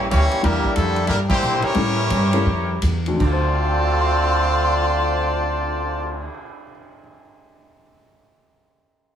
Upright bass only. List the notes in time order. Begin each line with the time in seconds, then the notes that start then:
0.12 D2
0.33 muted upright bass stroke
0.44 E2
0.76 F2
1.08 G2
1.42 A#2
1.63 muted upright bass stroke
1.75 A2
2.10 G2
2.45 F2
2.82 E2
3.20 D2